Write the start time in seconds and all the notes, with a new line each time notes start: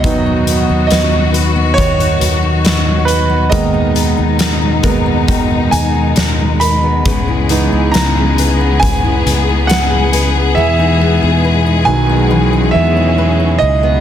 Already playing: B2 B3 D#4 D#5
0.03 D#2 D#3 F#3 B3 D#4 F#4 B4, kick, closed hi-hat
0.26 D#4
0.47 B3, closed hi-hat
0.69 D#2 D#4
0.87 D#5, closed hi-hat
0.91 D#2 B4, snare
1.12 D#4
1.34 B4, closed hi-hat
1.56 B3
1.74 D#3 C#5
1.78 B4, kick, closed hi-hat
1.99 D#4, closed hi-hat
2.21 D#2 B3, closed hi-hat
2.43 D#4
2.64 B4, snare, closed hi-hat
2.86 D#4
3.05 B4, closed hi-hat
3.30 B3
3.50 D#2 B2 D#3 G#3 A#3 B3 D#4 A#4 D#5, kick, closed hi-hat
3.74 D#4
3.95 B3, closed hi-hat
4.17 D#2 D#4
4.39 A#4, snare, closed hi-hat
4.62 D#4
4.83 D#2 G#3 A#3 B3 A#4, kick, closed hi-hat
5.06 B3
5.28 D#3 A#4, kick, closed hi-hat
5.51 D#4
5.71 D#2 B3 G#5, closed hi-hat
5.94 D#4
6.16 D#2 A#4, snare, closed hi-hat
6.39 D#4
6.60 A#4 B5, closed hi-hat
6.83 B3
7.04 C#2 C#3 B3 G#4 B4, kick, closed hi-hat
7.28 E4
7.49 E3 B3 D#4, closed hi-hat
7.72 C#2 E4
7.92 C#2 B4 A#5, snare, closed hi-hat
8.17 E4
8.38 B4, closed hi-hat
8.61 B3
8.80 C#3 B4 G#5, kick, closed hi-hat
9.04 E4
9.26 C#2 B3, closed hi-hat
9.49 E4
9.67 B4 F#5, snare, closed hi-hat
9.92 E4
10.13 B4, closed hi-hat
10.36 B3
10.55 E2 B2 E3 G#3 B4 E5
10.79 D#4
11.01 B3
11.22 E2 D#4
11.45 B4
11.66 D#4
11.85 B1 D#3 F#3 G#3 B4 G#5
12.09 B3
12.31 E3 C#4 B4
12.53 D#4
12.71 E2 B3 E5
12.96 D#4
13.18 B4
13.40 D#4
13.59 C#2 B4 D#5
13.83 B3